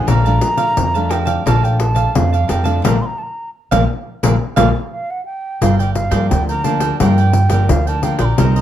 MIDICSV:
0, 0, Header, 1, 7, 480
1, 0, Start_track
1, 0, Key_signature, -2, "major"
1, 0, Tempo, 692042
1, 57, Time_signature, 4, 2, 24, 8
1, 5974, End_track
2, 0, Start_track
2, 0, Title_t, "Flute"
2, 0, Program_c, 0, 73
2, 52, Note_on_c, 0, 82, 98
2, 769, Note_on_c, 0, 79, 85
2, 779, Note_off_c, 0, 82, 0
2, 1013, Note_off_c, 0, 79, 0
2, 1018, Note_on_c, 0, 81, 97
2, 1139, Note_on_c, 0, 79, 85
2, 1150, Note_off_c, 0, 81, 0
2, 1247, Note_on_c, 0, 81, 86
2, 1258, Note_off_c, 0, 79, 0
2, 1497, Note_on_c, 0, 77, 79
2, 1508, Note_off_c, 0, 81, 0
2, 1723, Note_off_c, 0, 77, 0
2, 1727, Note_on_c, 0, 79, 84
2, 1836, Note_on_c, 0, 81, 81
2, 1846, Note_off_c, 0, 79, 0
2, 1966, Note_off_c, 0, 81, 0
2, 1973, Note_on_c, 0, 82, 79
2, 2091, Note_on_c, 0, 84, 73
2, 2097, Note_off_c, 0, 82, 0
2, 2123, Note_on_c, 0, 82, 79
2, 2129, Note_off_c, 0, 84, 0
2, 2208, Note_on_c, 0, 81, 73
2, 2215, Note_off_c, 0, 82, 0
2, 2241, Note_on_c, 0, 82, 79
2, 2247, Note_off_c, 0, 81, 0
2, 2427, Note_off_c, 0, 82, 0
2, 3411, Note_on_c, 0, 77, 77
2, 3540, Note_on_c, 0, 78, 78
2, 3551, Note_off_c, 0, 77, 0
2, 3640, Note_off_c, 0, 78, 0
2, 3644, Note_on_c, 0, 79, 83
2, 3899, Note_on_c, 0, 77, 85
2, 3910, Note_off_c, 0, 79, 0
2, 4012, Note_off_c, 0, 77, 0
2, 4016, Note_on_c, 0, 79, 84
2, 4117, Note_off_c, 0, 79, 0
2, 4121, Note_on_c, 0, 77, 89
2, 4352, Note_off_c, 0, 77, 0
2, 4370, Note_on_c, 0, 79, 89
2, 4485, Note_off_c, 0, 79, 0
2, 4498, Note_on_c, 0, 82, 96
2, 4608, Note_on_c, 0, 81, 91
2, 4618, Note_off_c, 0, 82, 0
2, 4852, Note_off_c, 0, 81, 0
2, 4857, Note_on_c, 0, 79, 102
2, 5335, Note_on_c, 0, 77, 85
2, 5346, Note_off_c, 0, 79, 0
2, 5465, Note_on_c, 0, 81, 88
2, 5475, Note_off_c, 0, 77, 0
2, 5575, Note_on_c, 0, 79, 88
2, 5585, Note_off_c, 0, 81, 0
2, 5686, Note_off_c, 0, 79, 0
2, 5690, Note_on_c, 0, 84, 84
2, 5721, Note_on_c, 0, 82, 92
2, 5728, Note_off_c, 0, 84, 0
2, 5974, Note_off_c, 0, 82, 0
2, 5974, End_track
3, 0, Start_track
3, 0, Title_t, "Cavaquinho"
3, 0, Program_c, 1, 24
3, 49, Note_on_c, 1, 70, 71
3, 57, Note_on_c, 1, 74, 70
3, 60, Note_on_c, 1, 77, 65
3, 65, Note_on_c, 1, 81, 71
3, 163, Note_off_c, 1, 70, 0
3, 165, Note_off_c, 1, 81, 0
3, 167, Note_off_c, 1, 74, 0
3, 169, Note_off_c, 1, 77, 0
3, 173, Note_on_c, 1, 81, 47
3, 180, Note_on_c, 1, 77, 47
3, 188, Note_on_c, 1, 74, 44
3, 279, Note_off_c, 1, 74, 0
3, 282, Note_off_c, 1, 77, 0
3, 284, Note_off_c, 1, 81, 0
3, 399, Note_on_c, 1, 77, 65
3, 405, Note_on_c, 1, 74, 51
3, 638, Note_off_c, 1, 77, 0
3, 641, Note_off_c, 1, 74, 0
3, 653, Note_on_c, 1, 81, 46
3, 662, Note_on_c, 1, 77, 39
3, 670, Note_on_c, 1, 74, 39
3, 756, Note_off_c, 1, 74, 0
3, 758, Note_on_c, 1, 70, 52
3, 761, Note_off_c, 1, 77, 0
3, 764, Note_on_c, 1, 74, 50
3, 765, Note_off_c, 1, 81, 0
3, 769, Note_on_c, 1, 77, 55
3, 774, Note_on_c, 1, 81, 54
3, 862, Note_off_c, 1, 81, 0
3, 870, Note_off_c, 1, 77, 0
3, 870, Note_on_c, 1, 81, 63
3, 876, Note_off_c, 1, 74, 0
3, 878, Note_off_c, 1, 70, 0
3, 878, Note_on_c, 1, 77, 56
3, 885, Note_on_c, 1, 74, 54
3, 994, Note_off_c, 1, 81, 0
3, 998, Note_off_c, 1, 77, 0
3, 1001, Note_off_c, 1, 74, 0
3, 1010, Note_on_c, 1, 70, 63
3, 1015, Note_on_c, 1, 74, 71
3, 1022, Note_on_c, 1, 77, 78
3, 1025, Note_on_c, 1, 81, 75
3, 1124, Note_off_c, 1, 70, 0
3, 1124, Note_off_c, 1, 81, 0
3, 1126, Note_off_c, 1, 74, 0
3, 1130, Note_off_c, 1, 77, 0
3, 1132, Note_on_c, 1, 81, 44
3, 1140, Note_on_c, 1, 77, 40
3, 1147, Note_on_c, 1, 74, 36
3, 1237, Note_off_c, 1, 74, 0
3, 1239, Note_off_c, 1, 77, 0
3, 1241, Note_off_c, 1, 81, 0
3, 1351, Note_on_c, 1, 81, 59
3, 1360, Note_on_c, 1, 77, 57
3, 1366, Note_on_c, 1, 74, 48
3, 1594, Note_off_c, 1, 81, 0
3, 1599, Note_off_c, 1, 77, 0
3, 1602, Note_off_c, 1, 74, 0
3, 1613, Note_on_c, 1, 81, 48
3, 1621, Note_on_c, 1, 77, 41
3, 1628, Note_on_c, 1, 74, 39
3, 1717, Note_off_c, 1, 74, 0
3, 1720, Note_on_c, 1, 70, 50
3, 1721, Note_off_c, 1, 77, 0
3, 1725, Note_off_c, 1, 81, 0
3, 1725, Note_on_c, 1, 74, 46
3, 1730, Note_on_c, 1, 77, 51
3, 1734, Note_on_c, 1, 81, 52
3, 1823, Note_off_c, 1, 81, 0
3, 1831, Note_off_c, 1, 77, 0
3, 1831, Note_on_c, 1, 81, 65
3, 1839, Note_off_c, 1, 70, 0
3, 1839, Note_off_c, 1, 74, 0
3, 1839, Note_on_c, 1, 77, 55
3, 1848, Note_on_c, 1, 74, 55
3, 1955, Note_off_c, 1, 81, 0
3, 1959, Note_off_c, 1, 77, 0
3, 1963, Note_off_c, 1, 74, 0
3, 1970, Note_on_c, 1, 70, 84
3, 1973, Note_on_c, 1, 74, 78
3, 1976, Note_on_c, 1, 77, 71
3, 2050, Note_off_c, 1, 70, 0
3, 2050, Note_off_c, 1, 74, 0
3, 2050, Note_off_c, 1, 77, 0
3, 2575, Note_on_c, 1, 77, 91
3, 2578, Note_on_c, 1, 74, 83
3, 2582, Note_on_c, 1, 70, 77
3, 2654, Note_off_c, 1, 74, 0
3, 2654, Note_off_c, 1, 77, 0
3, 2655, Note_off_c, 1, 70, 0
3, 2933, Note_on_c, 1, 70, 84
3, 2935, Note_on_c, 1, 74, 79
3, 2938, Note_on_c, 1, 77, 74
3, 3012, Note_off_c, 1, 74, 0
3, 3012, Note_off_c, 1, 77, 0
3, 3013, Note_off_c, 1, 70, 0
3, 3165, Note_on_c, 1, 77, 91
3, 3168, Note_on_c, 1, 74, 85
3, 3170, Note_on_c, 1, 70, 71
3, 3247, Note_off_c, 1, 70, 0
3, 3248, Note_off_c, 1, 74, 0
3, 3248, Note_off_c, 1, 77, 0
3, 3893, Note_on_c, 1, 65, 63
3, 3898, Note_on_c, 1, 70, 72
3, 3904, Note_on_c, 1, 74, 74
3, 3908, Note_on_c, 1, 79, 77
3, 4005, Note_off_c, 1, 65, 0
3, 4008, Note_off_c, 1, 70, 0
3, 4008, Note_off_c, 1, 79, 0
3, 4011, Note_off_c, 1, 74, 0
3, 4017, Note_on_c, 1, 79, 55
3, 4025, Note_on_c, 1, 74, 49
3, 4034, Note_on_c, 1, 70, 40
3, 4124, Note_off_c, 1, 70, 0
3, 4124, Note_off_c, 1, 74, 0
3, 4127, Note_off_c, 1, 79, 0
3, 4239, Note_on_c, 1, 79, 70
3, 4247, Note_on_c, 1, 74, 59
3, 4254, Note_on_c, 1, 70, 56
3, 4478, Note_off_c, 1, 79, 0
3, 4483, Note_off_c, 1, 74, 0
3, 4486, Note_off_c, 1, 70, 0
3, 4502, Note_on_c, 1, 79, 45
3, 4509, Note_on_c, 1, 74, 43
3, 4516, Note_on_c, 1, 70, 40
3, 4606, Note_off_c, 1, 70, 0
3, 4608, Note_on_c, 1, 65, 50
3, 4609, Note_off_c, 1, 74, 0
3, 4610, Note_off_c, 1, 79, 0
3, 4614, Note_on_c, 1, 70, 53
3, 4618, Note_on_c, 1, 74, 56
3, 4624, Note_on_c, 1, 79, 57
3, 4713, Note_off_c, 1, 79, 0
3, 4721, Note_off_c, 1, 74, 0
3, 4722, Note_on_c, 1, 79, 63
3, 4723, Note_off_c, 1, 65, 0
3, 4726, Note_off_c, 1, 70, 0
3, 4729, Note_on_c, 1, 74, 60
3, 4736, Note_on_c, 1, 70, 53
3, 4840, Note_off_c, 1, 79, 0
3, 4844, Note_off_c, 1, 74, 0
3, 4847, Note_off_c, 1, 70, 0
3, 4856, Note_on_c, 1, 65, 67
3, 4862, Note_on_c, 1, 70, 71
3, 4866, Note_on_c, 1, 74, 67
3, 4870, Note_on_c, 1, 79, 82
3, 4967, Note_off_c, 1, 65, 0
3, 4970, Note_off_c, 1, 70, 0
3, 4972, Note_off_c, 1, 74, 0
3, 4974, Note_off_c, 1, 79, 0
3, 4982, Note_on_c, 1, 79, 45
3, 4991, Note_on_c, 1, 74, 44
3, 4998, Note_on_c, 1, 70, 37
3, 5088, Note_off_c, 1, 70, 0
3, 5090, Note_off_c, 1, 79, 0
3, 5091, Note_off_c, 1, 74, 0
3, 5201, Note_on_c, 1, 79, 64
3, 5208, Note_on_c, 1, 74, 59
3, 5215, Note_on_c, 1, 70, 52
3, 5439, Note_off_c, 1, 79, 0
3, 5443, Note_off_c, 1, 74, 0
3, 5446, Note_off_c, 1, 70, 0
3, 5458, Note_on_c, 1, 79, 48
3, 5466, Note_on_c, 1, 74, 41
3, 5474, Note_on_c, 1, 70, 41
3, 5566, Note_off_c, 1, 70, 0
3, 5568, Note_off_c, 1, 79, 0
3, 5568, Note_on_c, 1, 65, 48
3, 5569, Note_off_c, 1, 74, 0
3, 5574, Note_on_c, 1, 70, 53
3, 5577, Note_on_c, 1, 74, 57
3, 5581, Note_on_c, 1, 79, 56
3, 5670, Note_off_c, 1, 79, 0
3, 5678, Note_off_c, 1, 74, 0
3, 5678, Note_on_c, 1, 79, 63
3, 5683, Note_off_c, 1, 65, 0
3, 5686, Note_off_c, 1, 70, 0
3, 5687, Note_on_c, 1, 74, 60
3, 5695, Note_on_c, 1, 70, 50
3, 5798, Note_off_c, 1, 79, 0
3, 5802, Note_off_c, 1, 74, 0
3, 5806, Note_off_c, 1, 70, 0
3, 5812, Note_on_c, 1, 63, 70
3, 5818, Note_on_c, 1, 70, 68
3, 5824, Note_on_c, 1, 72, 76
3, 5826, Note_on_c, 1, 75, 75
3, 5924, Note_off_c, 1, 63, 0
3, 5927, Note_off_c, 1, 70, 0
3, 5929, Note_off_c, 1, 75, 0
3, 5930, Note_off_c, 1, 72, 0
3, 5937, Note_on_c, 1, 75, 49
3, 5946, Note_on_c, 1, 72, 43
3, 5953, Note_on_c, 1, 70, 41
3, 5974, Note_off_c, 1, 70, 0
3, 5974, Note_off_c, 1, 72, 0
3, 5974, Note_off_c, 1, 75, 0
3, 5974, End_track
4, 0, Start_track
4, 0, Title_t, "Nylon-string guitar"
4, 0, Program_c, 2, 24
4, 0, Note_on_c, 2, 53, 64
4, 0, Note_on_c, 2, 57, 67
4, 0, Note_on_c, 2, 62, 60
4, 55, Note_on_c, 2, 46, 56
4, 171, Note_off_c, 2, 53, 0
4, 175, Note_off_c, 2, 57, 0
4, 177, Note_off_c, 2, 62, 0
4, 179, Note_on_c, 2, 53, 63
4, 182, Note_on_c, 2, 57, 64
4, 186, Note_on_c, 2, 62, 71
4, 260, Note_off_c, 2, 53, 0
4, 261, Note_off_c, 2, 57, 0
4, 263, Note_off_c, 2, 62, 0
4, 286, Note_on_c, 2, 53, 52
4, 290, Note_on_c, 2, 57, 54
4, 290, Note_on_c, 2, 62, 58
4, 512, Note_off_c, 2, 46, 0
4, 517, Note_off_c, 2, 53, 0
4, 518, Note_off_c, 2, 57, 0
4, 519, Note_off_c, 2, 62, 0
4, 538, Note_on_c, 2, 41, 53
4, 663, Note_on_c, 2, 53, 54
4, 666, Note_on_c, 2, 57, 63
4, 669, Note_on_c, 2, 62, 67
4, 982, Note_off_c, 2, 53, 0
4, 983, Note_off_c, 2, 57, 0
4, 985, Note_off_c, 2, 62, 0
4, 993, Note_off_c, 2, 41, 0
4, 1014, Note_on_c, 2, 46, 52
4, 1015, Note_on_c, 2, 53, 56
4, 1017, Note_on_c, 2, 57, 58
4, 1019, Note_on_c, 2, 62, 62
4, 1457, Note_off_c, 2, 53, 0
4, 1459, Note_off_c, 2, 57, 0
4, 1459, Note_off_c, 2, 62, 0
4, 1472, Note_off_c, 2, 46, 0
4, 1490, Note_on_c, 2, 41, 55
4, 1492, Note_on_c, 2, 57, 55
4, 1493, Note_on_c, 2, 53, 57
4, 1498, Note_on_c, 2, 62, 62
4, 1635, Note_off_c, 2, 53, 0
4, 1637, Note_off_c, 2, 57, 0
4, 1638, Note_off_c, 2, 62, 0
4, 1726, Note_on_c, 2, 53, 55
4, 1730, Note_on_c, 2, 57, 50
4, 1731, Note_on_c, 2, 62, 58
4, 1804, Note_off_c, 2, 53, 0
4, 1805, Note_off_c, 2, 57, 0
4, 1806, Note_off_c, 2, 62, 0
4, 1842, Note_on_c, 2, 53, 65
4, 1845, Note_on_c, 2, 57, 56
4, 1849, Note_on_c, 2, 62, 61
4, 1950, Note_off_c, 2, 41, 0
4, 1968, Note_off_c, 2, 53, 0
4, 1969, Note_off_c, 2, 57, 0
4, 1972, Note_off_c, 2, 62, 0
4, 1976, Note_on_c, 2, 53, 91
4, 1977, Note_on_c, 2, 57, 92
4, 1979, Note_on_c, 2, 58, 90
4, 2054, Note_off_c, 2, 53, 0
4, 2054, Note_off_c, 2, 57, 0
4, 2054, Note_off_c, 2, 58, 0
4, 2582, Note_on_c, 2, 53, 90
4, 2585, Note_on_c, 2, 57, 89
4, 2587, Note_on_c, 2, 58, 90
4, 2658, Note_off_c, 2, 53, 0
4, 2658, Note_off_c, 2, 57, 0
4, 2658, Note_off_c, 2, 58, 0
4, 2933, Note_on_c, 2, 53, 90
4, 2937, Note_on_c, 2, 57, 87
4, 2940, Note_on_c, 2, 58, 88
4, 3013, Note_off_c, 2, 53, 0
4, 3013, Note_off_c, 2, 57, 0
4, 3013, Note_off_c, 2, 58, 0
4, 3167, Note_on_c, 2, 53, 85
4, 3169, Note_on_c, 2, 57, 85
4, 3170, Note_on_c, 2, 58, 89
4, 3248, Note_off_c, 2, 58, 0
4, 3249, Note_off_c, 2, 53, 0
4, 3249, Note_off_c, 2, 57, 0
4, 3897, Note_on_c, 2, 43, 55
4, 4246, Note_on_c, 2, 53, 59
4, 4249, Note_on_c, 2, 58, 58
4, 4254, Note_on_c, 2, 62, 63
4, 4353, Note_off_c, 2, 43, 0
4, 4379, Note_on_c, 2, 50, 54
4, 4573, Note_off_c, 2, 53, 0
4, 4575, Note_off_c, 2, 58, 0
4, 4576, Note_off_c, 2, 62, 0
4, 4614, Note_on_c, 2, 53, 52
4, 4618, Note_on_c, 2, 58, 56
4, 4619, Note_on_c, 2, 62, 66
4, 4817, Note_off_c, 2, 53, 0
4, 4818, Note_off_c, 2, 58, 0
4, 4820, Note_off_c, 2, 62, 0
4, 4834, Note_off_c, 2, 50, 0
4, 4854, Note_on_c, 2, 43, 55
4, 4857, Note_on_c, 2, 53, 53
4, 4860, Note_on_c, 2, 58, 52
4, 4861, Note_on_c, 2, 62, 57
4, 5082, Note_off_c, 2, 53, 0
4, 5082, Note_off_c, 2, 58, 0
4, 5084, Note_off_c, 2, 62, 0
4, 5195, Note_on_c, 2, 53, 63
4, 5199, Note_on_c, 2, 58, 68
4, 5202, Note_on_c, 2, 62, 67
4, 5312, Note_off_c, 2, 43, 0
4, 5338, Note_on_c, 2, 50, 59
4, 5528, Note_off_c, 2, 53, 0
4, 5529, Note_off_c, 2, 58, 0
4, 5531, Note_off_c, 2, 62, 0
4, 5562, Note_on_c, 2, 53, 52
4, 5566, Note_on_c, 2, 62, 62
4, 5567, Note_on_c, 2, 58, 53
4, 5711, Note_off_c, 2, 53, 0
4, 5712, Note_off_c, 2, 58, 0
4, 5712, Note_off_c, 2, 62, 0
4, 5793, Note_off_c, 2, 50, 0
4, 5812, Note_on_c, 2, 48, 57
4, 5814, Note_on_c, 2, 55, 58
4, 5818, Note_on_c, 2, 58, 58
4, 5818, Note_on_c, 2, 63, 64
4, 5974, Note_off_c, 2, 48, 0
4, 5974, Note_off_c, 2, 55, 0
4, 5974, Note_off_c, 2, 58, 0
4, 5974, Note_off_c, 2, 63, 0
4, 5974, End_track
5, 0, Start_track
5, 0, Title_t, "Upright bass"
5, 0, Program_c, 3, 32
5, 57, Note_on_c, 3, 34, 83
5, 261, Note_off_c, 3, 34, 0
5, 537, Note_on_c, 3, 41, 81
5, 945, Note_off_c, 3, 41, 0
5, 1015, Note_on_c, 3, 34, 87
5, 1424, Note_off_c, 3, 34, 0
5, 1494, Note_on_c, 3, 41, 89
5, 1699, Note_off_c, 3, 41, 0
5, 1726, Note_on_c, 3, 41, 84
5, 1935, Note_off_c, 3, 41, 0
5, 1975, Note_on_c, 3, 34, 85
5, 2065, Note_off_c, 3, 34, 0
5, 2580, Note_on_c, 3, 34, 86
5, 2668, Note_off_c, 3, 34, 0
5, 2935, Note_on_c, 3, 34, 86
5, 3025, Note_off_c, 3, 34, 0
5, 3169, Note_on_c, 3, 34, 89
5, 3262, Note_off_c, 3, 34, 0
5, 3895, Note_on_c, 3, 31, 89
5, 4202, Note_off_c, 3, 31, 0
5, 4240, Note_on_c, 3, 43, 85
5, 4350, Note_off_c, 3, 43, 0
5, 4379, Note_on_c, 3, 38, 85
5, 4786, Note_off_c, 3, 38, 0
5, 4856, Note_on_c, 3, 43, 90
5, 5162, Note_off_c, 3, 43, 0
5, 5201, Note_on_c, 3, 31, 92
5, 5310, Note_off_c, 3, 31, 0
5, 5336, Note_on_c, 3, 38, 90
5, 5642, Note_off_c, 3, 38, 0
5, 5683, Note_on_c, 3, 34, 77
5, 5791, Note_off_c, 3, 34, 0
5, 5818, Note_on_c, 3, 36, 95
5, 5974, Note_off_c, 3, 36, 0
5, 5974, End_track
6, 0, Start_track
6, 0, Title_t, "Muted cavaquinho strokes"
6, 283, Note_on_c, 9, 29, 39
6, 352, Note_off_c, 9, 29, 0
6, 1243, Note_on_c, 9, 29, 34
6, 1313, Note_off_c, 9, 29, 0
6, 4128, Note_on_c, 9, 29, 37
6, 4197, Note_off_c, 9, 29, 0
6, 5094, Note_on_c, 9, 29, 33
6, 5163, Note_off_c, 9, 29, 0
6, 5974, End_track
7, 0, Start_track
7, 0, Title_t, "Pandeiro"
7, 54, Note_on_c, 9, 54, 82
7, 123, Note_off_c, 9, 54, 0
7, 179, Note_on_c, 9, 54, 33
7, 249, Note_off_c, 9, 54, 0
7, 287, Note_on_c, 9, 54, 65
7, 357, Note_off_c, 9, 54, 0
7, 399, Note_on_c, 9, 54, 54
7, 468, Note_off_c, 9, 54, 0
7, 534, Note_on_c, 9, 54, 70
7, 604, Note_off_c, 9, 54, 0
7, 659, Note_on_c, 9, 54, 33
7, 729, Note_off_c, 9, 54, 0
7, 767, Note_on_c, 9, 54, 63
7, 836, Note_off_c, 9, 54, 0
7, 880, Note_on_c, 9, 54, 54
7, 949, Note_off_c, 9, 54, 0
7, 1017, Note_on_c, 9, 54, 83
7, 1086, Note_off_c, 9, 54, 0
7, 1143, Note_on_c, 9, 54, 32
7, 1212, Note_off_c, 9, 54, 0
7, 1246, Note_on_c, 9, 54, 68
7, 1316, Note_off_c, 9, 54, 0
7, 1358, Note_on_c, 9, 54, 52
7, 1427, Note_off_c, 9, 54, 0
7, 1494, Note_on_c, 9, 54, 83
7, 1563, Note_off_c, 9, 54, 0
7, 1620, Note_on_c, 9, 54, 32
7, 1690, Note_off_c, 9, 54, 0
7, 1727, Note_on_c, 9, 54, 65
7, 1797, Note_off_c, 9, 54, 0
7, 1841, Note_on_c, 9, 54, 52
7, 1910, Note_off_c, 9, 54, 0
7, 1975, Note_on_c, 9, 54, 98
7, 2044, Note_off_c, 9, 54, 0
7, 2580, Note_on_c, 9, 54, 91
7, 2650, Note_off_c, 9, 54, 0
7, 2936, Note_on_c, 9, 54, 92
7, 3005, Note_off_c, 9, 54, 0
7, 3169, Note_on_c, 9, 54, 95
7, 3239, Note_off_c, 9, 54, 0
7, 3896, Note_on_c, 9, 54, 84
7, 3965, Note_off_c, 9, 54, 0
7, 4023, Note_on_c, 9, 54, 35
7, 4093, Note_off_c, 9, 54, 0
7, 4129, Note_on_c, 9, 54, 62
7, 4199, Note_off_c, 9, 54, 0
7, 4242, Note_on_c, 9, 54, 64
7, 4311, Note_off_c, 9, 54, 0
7, 4378, Note_on_c, 9, 54, 72
7, 4447, Note_off_c, 9, 54, 0
7, 4501, Note_on_c, 9, 54, 35
7, 4571, Note_off_c, 9, 54, 0
7, 4608, Note_on_c, 9, 54, 62
7, 4677, Note_off_c, 9, 54, 0
7, 4719, Note_on_c, 9, 54, 66
7, 4788, Note_off_c, 9, 54, 0
7, 4856, Note_on_c, 9, 54, 85
7, 4925, Note_off_c, 9, 54, 0
7, 4979, Note_on_c, 9, 54, 30
7, 5049, Note_off_c, 9, 54, 0
7, 5086, Note_on_c, 9, 54, 61
7, 5156, Note_off_c, 9, 54, 0
7, 5199, Note_on_c, 9, 54, 64
7, 5269, Note_off_c, 9, 54, 0
7, 5335, Note_on_c, 9, 54, 82
7, 5405, Note_off_c, 9, 54, 0
7, 5460, Note_on_c, 9, 54, 33
7, 5530, Note_off_c, 9, 54, 0
7, 5568, Note_on_c, 9, 54, 60
7, 5637, Note_off_c, 9, 54, 0
7, 5678, Note_on_c, 9, 54, 62
7, 5748, Note_off_c, 9, 54, 0
7, 5813, Note_on_c, 9, 54, 87
7, 5882, Note_off_c, 9, 54, 0
7, 5937, Note_on_c, 9, 54, 38
7, 5974, Note_off_c, 9, 54, 0
7, 5974, End_track
0, 0, End_of_file